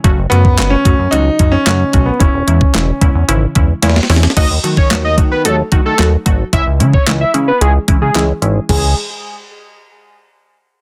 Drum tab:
CC |--------------------------------|--------------------------------|x-------------------------------|--------------------------------|
HH |x---x---x---x---x---x---x---x---|x---x---x---x---x---x---x---o---|x---x---x---x---x---x---x---x---|x---x---x---x---x---x---x---x---|
CP |--------x---------------x-------|--------x-----------------------|--------x---------------x-------|--------x---------------x-------|
SD |--------o---------------o-------|--------o---------------oooooooo|--------o---------------o-------|--------o---------------o-------|
BD |o-----o-----o-------o-------o---|o-----o-----o-------o-----------|o-----o-----o-------o-------o---|o-----o-------------o-----------|

CC |x-------------------------------|
HH |--------------------------------|
CP |--------------------------------|
SD |--------------------------------|
BD |o-------------------------------|